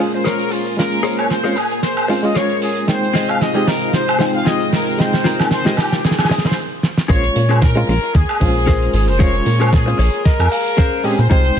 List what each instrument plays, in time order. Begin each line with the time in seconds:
Already playing: reed electric piano G#3, string machine A#3 G#4 C6, trumpet section G#4
0.00 reed electric piano C#4 F4, shaker
0.12 trumpet section C5, muted clean electric guitar stroke, shaker
0.24 clean electric guitar G#4 A#4 C5 C#5, trumpet section A#4, snare, closed hi-hat, shaker
0.39 closed hi-hat
0.52 trumpet section F4, open hi-hat, shaker
0.66 open hi-hat, shaker
0.77 reed electric piano G#3 C#4 F4, trumpet section A#4, string machine A#4, snare, closed hi-hat, shaker
0.92 closed hi-hat, shaker
1.03 clean electric guitar G#4 A#4 C5 C#5, open hi-hat, shaker
1.18 trumpet section C#5, closed hi-hat, high woodblock, shaker
1.30 trumpet section C5, snare, closed hi-hat, shaker
1.44 reed electric piano G#3 C4 C#4 F4, clean electric guitar G#4 A#4 C5 C#5, closed hi-hat, shaker
1.56 trumpet section G#4, open hi-hat, high woodblock, shaker
1.70 muted clean electric guitar stroke, closed hi-hat, shaker
1.83 trumpet section C5, snare, closed hi-hat, shaker
1.97 closed hi-hat, high woodblock, shaker
2.08 reed electric piano G#3 C4 C#4 F4, muted clean electric guitar stroke, open hi-hat, shaker
2.23 reed electric piano G#3 C#4 F4, trumpet section D#5, muted clean electric guitar stroke, open hi-hat, shaker
2.35 clean electric guitar G#4 A#4 C5 C#5, trumpet section C#5, snare, closed hi-hat, shaker
2.50 closed hi-hat, shaker
2.62 trumpet section G#4, open hi-hat, shaker
2.77 closed hi-hat, shaker
2.87 string machine C3 G#3 D#4 F4 C5, reed electric piano G#3 C4 D#4 G5, trumpet section C5, snare, closed hi-hat, shaker
3.03 closed hi-hat
3.13 clean electric guitar C4 F4 G#4 D#5, snare, open hi-hat, shaker
3.28 trumpet section F5, closed hi-hat, high woodblock, shaker
3.41 trumpet section D#5, snare, closed hi-hat, shaker
3.54 reed electric piano G#3 C4 D#4 G4, clean electric guitar C4 F4 G#4 D#5, closed hi-hat, shaker
3.67 trumpet section A#4, snare, open hi-hat, shaker
3.80 muted clean electric guitar stroke, closed hi-hat, shaker
3.93 trumpet section C5, snare, closed hi-hat, shaker
4.08 closed hi-hat, high woodblock, shaker
4.19 reed electric piano G#3 C4 D#4 G5, muted clean electric guitar stroke, snare, open hi-hat, shaker
4.33 trumpet section F5, muted clean electric guitar stroke, shaker
4.45 clean electric guitar C4 F4 G#4 D#5, trumpet section D#5, snare, closed hi-hat, shaker
4.60 closed hi-hat
4.73 trumpet section A#4, snare, open hi-hat, shaker
4.87 open hi-hat, shaker
4.98 reed electric piano G#3 C4 D#4 G5, string machine A#4, trumpet section C5, snare, closed hi-hat, shaker
5.13 snare, closed hi-hat, shaker
5.24 clean electric guitar C4 F4 G#4 A#4, snare, open hi-hat, shaker
5.39 snare, closed hi-hat, high woodblock, shaker
5.51 trumpet section C5, snare, closed hi-hat, shaker
5.65 reed electric piano G#3 C4 D#4 G4, clean electric guitar C4 F4 G#4 D#5, snare, closed hi-hat, shaker
5.77 trumpet section G4, snare, open hi-hat, high woodblock, shaker
5.91 muted clean electric guitar stroke, snare, closed hi-hat, shaker
6.04 trumpet section G#4, snare, closed hi-hat, shaker
6.11 snare
6.19 snare, closed hi-hat, high woodblock, shaker
6.25 snare
6.29 muted clean electric guitar stroke, snare, open hi-hat, shaker
6.38 snare
6.44 trumpet section C5, muted clean electric guitar stroke, snare, open hi-hat, shaker
6.51 snare
6.83 snare
6.97 snare
7.08 analog synth bass A#1, reed electric piano G#3 C#4 F4 C#5, clean electric guitar C#4 G#4 A#4 C5, string machine G#4 A#4 C6, trumpet section C#5, kick, closed hi-hat, shaker
7.24 closed hi-hat
7.35 analog synth bass A#2, muted clean electric guitar stroke, open hi-hat, shaker
7.49 clean electric guitar C#4 G#4 A#4 C5, closed hi-hat, high woodblock, shaker
7.62 trumpet section A#4, kick, snare, closed hi-hat, shaker
7.75 reed electric piano G#3 C4 C#4 F4, muted clean electric guitar stroke, closed hi-hat, shaker
7.87 analog synth bass A#1, muted clean electric guitar stroke, open hi-hat, shaker
8.02 muted clean electric guitar stroke, closed hi-hat, shaker
8.14 analog synth bass D#2, trumpet section G#4, muted clean electric guitar stroke, kick, closed hi-hat, shaker
8.29 closed hi-hat, high woodblock, shaker
8.40 analog synth bass A#1, reed electric piano G#3 C#4 F4 C5, kick, open hi-hat, shaker
8.56 shaker
8.67 clean electric guitar C#4 G#4 A#4 C5, kick, snare, closed hi-hat, shaker
8.82 closed hi-hat, shaker
8.94 analog synth bass G#1, trumpet section G#4, open hi-hat, shaker
9.08 analog synth bass F1, trumpet section C5, open hi-hat, shaker
9.19 reed electric piano G#3 C#4 F4 C#5, clean electric guitar C#4 G#4 A#4 C5, trumpet section C#5, kick, closed hi-hat, shaker
9.34 closed hi-hat, shaker
9.46 analog synth bass A#2, muted clean electric guitar stroke, open hi-hat, shaker
9.60 clean electric guitar C#4 G#4 A#4 C5, closed hi-hat, high woodblock, shaker
9.73 trumpet section G#4, kick, snare, closed hi-hat, shaker
9.86 reed electric piano G#3 C4 C#4 F4, muted clean electric guitar stroke, closed hi-hat, shaker
9.98 analog synth bass A#1, clean electric guitar C#5, muted clean electric guitar stroke, open hi-hat, shaker
10.12 muted clean electric guitar stroke, closed hi-hat, shaker
10.24 trumpet section A#4, clean electric guitar D#5, muted clean electric guitar stroke, kick, snare, closed hi-hat, shaker
10.39 analog synth bass F2, closed hi-hat, high woodblock, shaker
10.51 clean electric guitar F5, open hi-hat, shaker
10.66 open hi-hat, shaker
10.77 clean electric guitar C#4 G#4 A#4 C5 F5, kick, snare, closed hi-hat, shaker
10.92 closed hi-hat, shaker
11.04 analog synth bass A#2, reed electric piano G#3 C4 C#4 G4, trumpet section G#4, clean electric guitar G#5, open hi-hat, shaker
11.19 analog synth bass A#2, trumpet section C5, closed hi-hat, shaker
11.30 analog synth bass C2, reed electric piano G#3 C4 D#4 G5, clean electric guitar D#4 F4 G#4 C5, trumpet section C5, string machine C5 F5 D#6, kick, closed hi-hat, shaker
11.45 closed hi-hat
11.56 muted clean electric guitar stroke